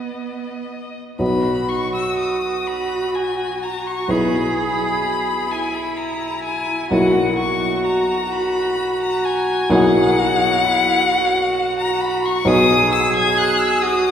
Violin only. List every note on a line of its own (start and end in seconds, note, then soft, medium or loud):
0.00 0.95 D#5 soft
1.21 1.70 B5 medium
1.69 1.93 C#6 medium
1.95 2.18 E6 medium
2.19 2.68 D#6 medium
2.67 3.16 B5 medium
3.15 3.65 G#5 medium
3.63 3.88 A#5 medium
3.87 4.12 C#6 medium
4.10 4.57 B5 medium
4.58 5.53 B5 medium
5.51 5.76 G#5 medium
5.74 5.98 B5 medium
5.97 6.43 A#5 medium
6.44 6.91 G#5 medium
6.92 7.38 F#5 medium
7.38 7.84 C#6 medium
7.85 8.33 A#5 medium
8.32 9.02 B5 medium
9.03 9.26 A#5 medium
9.24 9.72 G#5 medium
9.70 11.78 F#5 loud
11.79 12.02 A#5 medium
12.01 12.27 B5 medium
12.25 12.49 C#6 medium
12.47 12.92 D#6 loud
12.93 13.15 E6 medium
13.16 13.39 G#6 medium
13.38 13.62 F#6 medium
13.60 13.83 E6 medium
13.82 14.11 D#6 medium